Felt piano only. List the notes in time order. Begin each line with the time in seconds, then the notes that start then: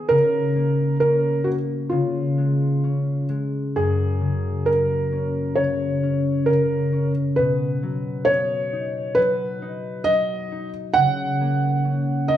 Already playing: G#4
0.09 A#4
1.00 A#4
1.44 F#4
1.90 F4
3.76 G#4
4.66 A#4
5.56 C#5
6.46 A#4
7.36 B4
8.25 C#5
9.15 B4
10.04 D#5
10.94 F#5
12.28 D#5